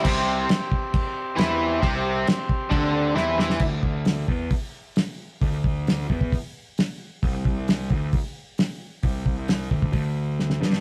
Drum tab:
CC |x---x---x---x---|x---x---x-------|x---------------|----------------|
HH |----------------|----------------|----o---o---o---|o---o---o---o---|
SD |----o-------o---|----o-------o-oo|----o-------o---|----o-------o---|
BD |o-----o-o-------|o-----o-o-------|o-o---o-o-------|o-o---ooo-------|

CC |----------------|----------------|
HH |o---o---o---o---|o---o---o-------|
SD |----o-------o---|----o-------oooo|
BD |o-o---o-o-------|o-o---ooo-------|